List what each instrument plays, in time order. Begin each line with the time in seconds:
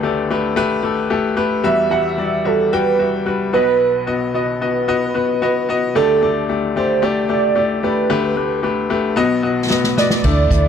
Already playing: upright piano D2 D3 A3 G4 A4 B4
0.03 upright piano A3 G4 D5
0.30 upright piano A3 G4 B4
0.56 upright piano A3 G4 B4
0.83 upright piano A3 G4 A4
1.10 upright piano A3 G4 A4
1.37 upright piano A3 G4 B4
1.64 upright piano E2 E3 G3 F#4 E5, soft synth lead E5
1.90 upright piano G3 F#4 F#5
2.18 upright piano G3 F#4 D5
2.45 upright piano G3 F#4 E5, soft synth lead A4
2.73 upright piano G3 F#4 G5, soft synth lead B4
2.99 upright piano G3 F#4 E5
3.26 upright piano G3 F#4 B4
3.53 upright piano B1 B2 B3 F#4 D#5, soft synth lead B4
4.07 upright piano B3 F#4 D#5
4.34 upright piano B3 F#4 D#5, soft synth lead D#5
4.60 upright piano B3 F#4 D#5, soft synth lead B4
4.88 upright piano B3 F#4 D#5
5.14 upright piano B3 F#4 B4
5.42 upright piano B3 F#4 D#5
5.69 upright piano B3 F#4 D#5
5.95 upright piano D2 D3 A3 G4 D5, soft synth lead A4
6.22 upright piano A3 G4 D5
6.49 upright piano A3 G4 D5
6.76 upright piano A3 G4 D5, soft synth lead C5
7.02 upright piano A3 G4 D5, soft synth lead D5
7.29 upright piano A3 G4 D5
7.55 upright piano A3 G4 D5
7.83 upright piano A3 G4 D5, soft synth lead B4
8.10 upright piano D2 D3 A3 G4 B4
8.36 upright piano A3 G4 B4
8.63 upright piano A3 G4 B4
8.90 upright piano A3 G4 B4
9.16 upright piano B1 B2 B3 F#4 D#5
9.42 upright piano B3 F#4 D#5
9.69 upright piano B3 F#4 D#5, snare
9.84 snare
9.97 upright piano B3 F#4 D#5, soft synth lead D5, snare
10.10 snare
10.24 fingered electric bass D2, upright piano D3 A3 E4 D5, string section E3 A3 D4, kick, crash
10.51 fingered electric bass D2, upright piano A3 E4 D5, kick, closed hi-hat